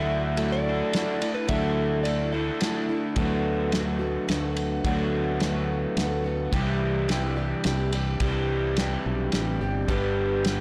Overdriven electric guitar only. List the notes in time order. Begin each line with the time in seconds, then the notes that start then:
Already playing: D3 D4 F#4 A4
0.68 D3 D4 F#4 A4
1.49 D3 D4 F#4 A4
2.32 D3 D4 F#4 A4
3.16 D3 F#3 A3 D4 F#4
4.85 D3 F#3 A3 D4 F#4
6.53 C3 E3 G3 E4 G4
8.21 C3 E3 G3 E4 G4
9.88 G2 D3 G3 B3 D4 G4